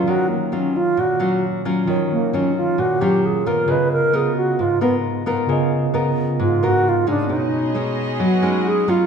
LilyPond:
<<
  \new Staff \with { instrumentName = "Violin section" } { \time 4/4 \key ees \minor \tempo 4 = 133 r1 | r1 | r1 | r1 |
<b gis' cis'' dis''>1 | }
  \new Staff \with { instrumentName = "Tine electric piano" } { \time 4/4 \key ees \minor <ees bes' des'' f''>1 | <ees f' bes' des''>1 | <des f' aes' bes' ees''>1 | <des f' aes' bes' ees''>1 |
<b fis' gis' cis'' dis''>1 | }
  \new Staff \with { instrumentName = "Alto flute" } { \time 4/4 \key ees \minor ges'8 bes8 des'8 f'8 ges'4 r4 | r8 bes8 des'8 f'8 ges'8 g'8 aes'8 bes'8 | ces''8 bes'8 aes'8 ges'8 f'8 ces'8 r4 | r2 f'8 ges'8 f'8 d'8 |
dis'4 r4 fis'4 gis'8 f'8 | }
  \new Staff \with { instrumentName = "Nylon-string guitar" } { \time 4/4 \key ees \minor << { <ges des' f'>4 <ges des' f'>4 r8 <ges des' f'>4 <ges des' f'>8~ | <ges des' f'>4 <ges des' f'>4 r8 <ges des' f'>4 <ces' f' bes'>8~ | <ces' f' bes'>4 <ces' f' bes'>4 r8 <ces' f' bes'>4 <ces' f' bes'>8~ | <ces' f' bes'>4 <ces' f' bes'>4. <ces' f' bes'>4 <aes des' ees'>8~ |
<aes des' ees'>4 <gis cis' dis'>4 r8 <gis cis' dis'>4 <fis cis' f'>8 | } \\ { ees2 bes,2 | ees2 bes,2 | des2 aes,2 | des2 aes,2 |
b,2 fis2 | } >> }
>>